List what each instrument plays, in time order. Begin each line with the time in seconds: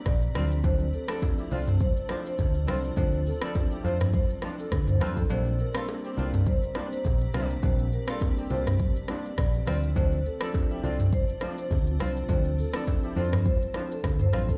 Already playing: ambient pad C4 G4 D5 A#5
0.06 fingered electric bass A#1, marimba D5, kick, cross-stick, high bongo, shaker
0.21 shaker
0.35 fingered electric bass D2, horn section D3 C4 F4, tine electric piano F3 A3 C4 D4, ambient pad F4 A5, marimba D5, cross-stick, low bongo, low conga, shaker
0.51 shaker
0.64 tine electric piano F3 A3 C4 D4, marimba C5, kick, low conga, shaker
0.79 shaker
0.93 marimba A4, shaker
1.08 tine electric piano F3 A3 C4 D4, horn section F3 D4 A4, marimba A4, cross-stick, shaker
1.21 kick, high bongo, shaker
1.38 horn section G3 E4 G4, shaker
1.51 fingered electric bass C2, horn section D3 C4 F4, tine electric piano F3 A3 C4 D4, marimba D5, low bongo, shaker
1.67 mid tom, high bongo, shaker
1.80 marimba C5, kick, low conga, shaker
1.97 shaker
2.09 horn section A2 F3 D4, tine electric piano F3 A3 C4 D4, cross-stick, high bongo, low bongo, shaker
2.26 marimba C5, shaker
2.39 fingered electric bass D2, kick, high bongo, shaker
2.54 shaker
2.68 fingered electric bass C2, horn section D3 C4 F4, tine electric piano F3 A3 C4 D4, marimba C5, cross-stick, low bongo, low conga, shaker
2.84 shaker
2.97 fingered electric bass D2, tine electric piano F3 A3 C4 D4, marimba C5, kick, low conga, shaker
3.12 shaker
3.26 marimba A4, open hi-hat, shaker
3.42 tine electric piano F3 A3 C4 D4, horn section F3 D4 A4, marimba D5, cross-stick, shaker
3.54 kick, high bongo, shaker
3.71 horn section G3 E4 G4, shaker
3.84 fingered electric bass F2, horn section D3 C4 F4, tine electric piano F3 A3 C4 D4, marimba C5, low bongo, shaker
4.00 cross-stick, mid tom, high bongo, shaker
4.13 marimba C5, kick, low conga, shaker
4.30 shaker
4.42 horn section A2 F3 D4, tine electric piano F3 A3 C4 D4, cross-stick, high bongo, low bongo, shaker
4.59 marimba A4, shaker
4.72 fingered electric bass D2, kick, cross-stick, high bongo, shaker
4.87 marimba C5, mid tom, shaker
5.01 fingered electric bass F2, horn section D3 C4 F4, tine electric piano F3 A3 C4 D4, cross-stick, low bongo, low conga, shaker
5.17 marimba A4, kick, shaker
5.30 fingered electric bass A#1, tine electric piano G3 A#3 C4 D4, ambient pad G4 D5 A#5, marimba C5, low conga, shaker
5.45 shaker
5.59 marimba A#4, shaker
5.75 tine electric piano G3 A#3 C4 D4, horn section A3 F4 A4, marimba A#4, cross-stick, shaker
5.87 high bongo, shaker
6.04 horn section D3 C4 G4, shaker
6.17 fingered electric bass C2, horn section D3 C4 F4, tine electric piano G3 A#3 C4 D4, marimba D5, low bongo, shaker
6.33 mid tom, high bongo, shaker
6.46 marimba C5, kick, low conga, shaker
6.63 shaker
6.75 horn section G2 F3 D4, tine electric piano G3 A#3 C4 D4, cross-stick, high bongo, low bongo, shaker
6.92 marimba C5, shaker
7.05 fingered electric bass A#1, kick, high bongo, shaker
7.20 shaker
7.34 fingered electric bass C2, horn section D3 C4 F4, tine electric piano G3 A#3 C4 D4, marimba C5, cross-stick, low bongo, low conga, shaker
7.50 shaker
7.63 fingered electric bass A#1, tine electric piano G3 A#3 C4 D4, marimba C5, ambient pad A5, kick, low conga, shaker
7.79 shaker
7.92 marimba A#4, shaker
8.08 tine electric piano G3 A#3 C4 D4, horn section A3 F4 A4, marimba D5, cross-stick, shaker
8.21 kick, high bongo, shaker
8.37 horn section D3 C4 G4, shaker
8.50 fingered electric bass C2, horn section D3 C4 F4, tine electric piano G3 A#3 C4 D4, marimba C5, low bongo, shaker
8.67 cross-stick, mid tom, high bongo, shaker
8.79 kick, low conga, shaker
8.96 shaker
9.08 horn section G2 F3 D4, tine electric piano G3 A#3 C4 D4, marimba D5, cross-stick, high bongo, low bongo, shaker
9.25 shaker
9.38 fingered electric bass A#1, marimba D5, kick, cross-stick, high bongo, shaker
9.53 shaker
9.66 fingered electric bass D2, horn section D3 C4 F4, tine electric piano F3 A3 C4 D4, ambient pad C4 F4 A5, marimba D5, cross-stick, low bongo, low conga, shaker
9.83 shaker
9.96 tine electric piano F3 A3 C4 D4, marimba C5, kick, low conga, shaker
10.12 shaker
10.25 marimba A4, shaker
10.41 tine electric piano F3 A3 C4 D4, horn section F3 D4 A4, marimba A4, cross-stick, shaker
10.54 kick, high bongo, shaker
10.70 horn section G3 E4 G4, shaker
10.83 fingered electric bass C2, horn section D3 C4 F4, tine electric piano F3 A3 C4 D4, marimba D5, low bongo, shaker
10.99 mid tom, high bongo, shaker
11.12 marimba C5, kick, low conga, shaker
11.29 shaker
11.41 horn section A2 F3 D4, tine electric piano F3 A3 C4 D4, cross-stick, high bongo, low bongo, shaker
11.58 marimba C5, shaker
11.71 fingered electric bass D2, kick, high bongo, shaker
11.86 shaker
11.99 fingered electric bass C2, horn section D3 C4 F4, tine electric piano F3 A3 C4 D4, ambient pad C5, marimba C5, cross-stick, low bongo, low conga, shaker
12.16 shaker
12.28 fingered electric bass D2, tine electric piano F3 A3 C4 D4, marimba C5, kick, low conga, shaker
12.45 shaker
12.58 marimba A4, open hi-hat, shaker
12.73 tine electric piano F3 A3 C4 D4, horn section F3 D4 A4, marimba D5, cross-stick, low bongo, shaker
12.87 kick, high bongo, shaker
13.03 horn section G3 E4 G4, shaker
13.16 fingered electric bass F2, horn section D3 C4 F4, tine electric piano F3 A3 C4 D4, marimba C5, low bongo, shaker
13.32 cross-stick, mid tom, high bongo, shaker
13.45 marimba C5, kick, low conga, shaker
13.62 shaker
13.74 horn section A2 F3 D4, tine electric piano F3 A3 C4 D4, cross-stick, high bongo, low bongo, shaker
13.91 marimba A4, shaker
14.04 fingered electric bass D2, kick, cross-stick, high bongo, shaker
14.19 marimba C5, mid tom, shaker
14.33 fingered electric bass A1, horn section D3 C4 F4, tine electric piano F3 A3 C4 D4, cross-stick, low bongo, low conga, shaker
14.49 marimba A4, kick, shaker